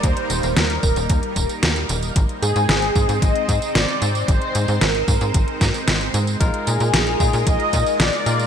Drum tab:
HH |xxxxxx-xxxxxxxxx|xxxxxx-xxxxxxxxx|xxxxxx-xxxxxxxxx|xxxxxx-xxxxxxxxx|
TB |x-xxx-xxx-xxx-xx|x-xxx-xxx-xxx-xx|x-xxx-xxx-xxx-xx|x-xxx-xxx-xxx-xx|
SD |----o-------o---|----o-------o---|----o-----o-o---|----o-------o---|
BD |o-----o-o-o-----|o-----o-o-o-----|o-----o-o-o-----|o-----o-o-o-----|